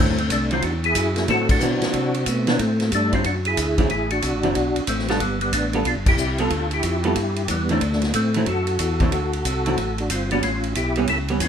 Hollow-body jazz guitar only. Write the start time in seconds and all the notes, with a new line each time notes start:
Already playing: D3 F#3
0.00 C4 E4
0.52 D3 F#3 C4 E4
1.28 D3 F#3 C4 E4
1.61 D3 F#3 C4 E4
2.47 D3 F#3 C4 E4
3.12 D3 F#3 C4 E4
3.78 D3 F#3 C4 E4
4.43 D3 F#3 C4 E4
5.09 G3 B3 F4 A4
5.74 G3 B3 F4 A4
6.39 G3 B3 F4 A4
7.05 G3 B3 F4 A4
7.70 D3 F#3 C4 E4
8.36 D3 F#3 C4 E4
9.01 D3 F#3 C4 E4
9.66 D3 F#3 C4 E4
10.32 G3 B3 C#4
10.97 G3 B3 C#4
11.30 G3 B3 C#4